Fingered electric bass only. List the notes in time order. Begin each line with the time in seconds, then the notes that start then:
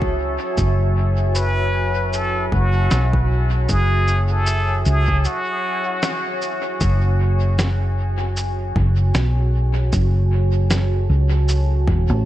Already playing: C#2
0.58 F#1
2.52 F#1
2.92 B1
3.69 F#1
4.86 C#2
6.81 F#1
8.76 F#1
9.15 B1
9.93 F#1
11.10 C#2
11.88 E1
12.10 A1